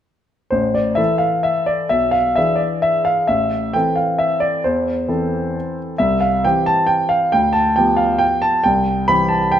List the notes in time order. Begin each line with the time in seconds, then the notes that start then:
0.50 A1 C5
0.74 D5
0.95 E3 E4 A4 E5
1.18 F5
1.43 E5
1.66 D5
1.89 B1 E5
2.11 F5
2.36 E3 D4 G#4 E5
2.56 D5
2.82 E5
3.05 F5
3.27 A1 E5
3.73 E3 C4 A4 G5
3.96 F5
4.18 E5
4.40 D5
4.64 E2 C5
5.08 E3 C4 A4
5.98 C2 E5
6.21 F5
6.45 E3 C4 G4 G5
6.66 A5
6.87 G5
7.09 F5
7.32 D2 G5
7.53 A5
7.76 F3 B3 G4 G5
7.97 F5
8.18 G5
8.42 A5
8.64 C2 G5
9.08 E3 C4 G4 B5
9.29 A5
9.52 G5